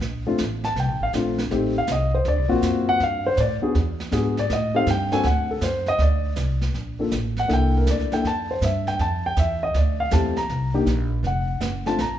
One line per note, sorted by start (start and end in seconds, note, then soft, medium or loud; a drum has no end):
0.01 0.38 A#1 medium
0.01 brush sweep soft
0.01 snare soft
0.27 0.38 A3 medium
0.27 0.38 C4 medium
0.27 0.38 D4 medium
0.27 0.38 F4 medium
0.38 0.75 A1 medium
0.38 snare medium
0.38 hi-hat pedal medium
0.64 0.76 A5 medium
0.64 snare soft
0.76 0.88 C2 medium
0.76 1.02 G5 medium
0.76 brush sweep soft
0.76 snare soft
0.88 1.00 A#1 soft
1.01 1.13 A1 medium
1.01 1.10 F5 medium
1.13 1.50 A#1 medium
1.13 1.37 A3 medium
1.13 1.37 C4 soft
1.13 1.37 D4 medium
1.13 1.37 F4 medium
1.13 snare medium
1.13 hi-hat pedal medium
1.38 snare soft
1.51 1.87 A1 medium
1.51 1.73 A3 medium
1.51 1.74 C4 medium
1.51 1.74 D#4 medium
1.51 1.74 G4 medium
1.51 brush sweep soft
1.51 snare soft
1.78 1.89 F5 medium
1.87 2.24 C2 medium
1.87 snare medium
1.87 hi-hat pedal medium
1.92 2.14 D#5 medium
2.14 2.26 C5 medium
2.25 2.38 D2 medium
2.25 2.51 D5 medium
2.25 brush sweep soft
2.25 snare soft
2.38 2.50 C2 medium
2.48 2.62 A#1 medium
2.48 2.97 A#3 medium
2.48 2.97 C4 medium
2.48 2.98 F4 medium
2.48 2.98 F#4 medium
2.62 2.99 F#2 medium
2.62 snare medium
2.62 hi-hat pedal medium
2.89 3.01 F#5 loud
3.00 3.37 G2 medium
3.00 3.26 F5 medium
3.00 brush sweep soft
3.00 snare soft
3.27 3.38 C5 medium
3.36 3.61 A2 medium
3.36 3.39 C#5 medium
3.36 snare medium
3.36 hi-hat pedal medium
3.40 3.55 D5 medium
3.62 3.74 B3 medium
3.62 3.74 D4 medium
3.62 3.74 F#4 medium
3.62 3.74 G#4 medium
3.62 muted upright bass stroke soft
3.75 4.12 E2 medium
3.75 brush sweep soft
3.75 snare soft
4.00 snare soft
4.11 4.49 G#2 medium
4.11 4.35 B3 medium
4.11 4.35 D4 medium
4.11 4.35 F#4 medium
4.11 4.35 G#4 medium
4.11 snare medium
4.11 hi-hat pedal soft
4.37 4.51 D5 medium
4.37 snare soft
4.50 4.86 A2 medium
4.50 4.76 D#5 medium
4.50 brush sweep soft
4.50 snare soft
4.75 4.86 C4 medium
4.75 4.86 D#4 medium
4.75 4.86 G4 medium
4.75 4.87 A4 medium
4.75 4.88 F5 loud
4.86 5.23 G2 medium
4.86 5.13 G5 medium
4.86 snare medium
4.86 hi-hat pedal medium
5.12 5.24 C4 medium
5.12 5.24 D4 medium
5.12 5.24 F#4 medium
5.12 5.24 A4 medium
5.12 5.25 G#5 loud
5.12 snare soft
5.23 5.60 D2 medium
5.23 5.50 F#5 medium
5.23 brush sweep soft
5.23 snare soft
5.51 5.63 A4 medium
5.61 5.98 F#2 medium
5.61 5.87 C5 medium
5.61 snare medium
5.61 hi-hat pedal medium
5.86 6.00 D#5 loud
5.86 snare soft
5.98 6.35 D2 medium
5.98 6.59 D5 medium
5.98 brush sweep soft
5.98 snare soft
6.36 6.73 C2 medium
6.36 snare medium
6.36 hi-hat pedal medium
6.61 snare soft
6.74 7.11 A#1 medium
6.74 brush sweep soft
6.74 snare soft
6.99 7.11 A#3 medium
6.99 7.11 D4 medium
6.99 7.11 F4 soft
6.99 7.12 A4 medium
7.11 7.49 A1 medium
7.11 snare medium
7.11 hi-hat pedal medium
7.37 7.51 F#5 medium
7.37 snare soft
7.48 7.86 C2 medium
7.48 8.06 A#3 medium
7.48 8.07 D4 medium
7.48 8.07 E4 medium
7.48 8.07 A4 medium
7.48 brush sweep soft
7.48 snare soft
7.53 7.76 G5 medium
7.77 7.88 A#4 medium
7.86 8.10 D2 medium
7.86 snare medium
7.86 hi-hat pedal medium
7.90 8.13 D5 medium
7.99 snare soft
8.12 8.24 A#3 medium
8.12 8.24 D4 medium
8.12 8.24 E4 medium
8.12 8.24 A4 medium
8.12 8.25 G5 medium
8.12 snare soft
8.24 8.60 F2 medium
8.24 8.50 A5 medium
8.24 brush sweep soft
8.24 snare soft
8.51 8.62 C5 medium
8.61 8.98 G2 medium
8.61 8.87 E5 medium
8.61 snare medium
8.61 hi-hat pedal medium
8.87 9.00 G5 medium
8.87 snare soft
8.99 9.36 F2 medium
8.99 9.25 A5 medium
8.99 brush sweep soft
8.99 snare soft
9.26 9.38 G5 medium
9.36 9.73 E2 medium
9.36 9.62 E5 medium
9.36 snare medium
9.36 hi-hat pedal soft
9.63 9.75 D#5 medium
9.74 10.11 D2 medium
9.74 10.00 D5 medium
9.74 brush sweep soft
9.74 snare soft
10.00 10.12 F5 medium
10.11 10.48 E2 medium
10.11 10.34 A3 medium
10.11 10.35 C4 soft
10.11 10.35 E4 soft
10.11 10.35 G4 medium
10.11 10.37 A5 medium
10.11 snare medium
10.11 hi-hat pedal medium
10.36 10.72 A#5 medium
10.36 snare soft
10.49 10.86 C2 medium
10.49 brush sweep soft
10.49 snare soft
10.74 10.86 A#3 medium
10.74 10.86 D4 medium
10.74 10.86 D#4 medium
10.74 10.86 G4 medium
10.86 11.22 A#1 medium
10.86 snare medium
10.86 hi-hat pedal soft
11.23 11.60 F1 medium
11.23 11.84 F#5 medium
11.23 brush sweep soft
11.23 snare soft
11.60 11.97 F#1 medium
11.60 snare medium
11.60 hi-hat pedal medium
11.86 11.98 A3 medium
11.86 11.98 C4 soft
11.86 11.98 D4 medium
11.86 11.98 F4 medium
11.86 11.99 A5 medium
11.86 snare soft
11.98 12.19 A#1 medium
11.98 12.19 A#5 medium
11.98 brush sweep soft
11.98 snare soft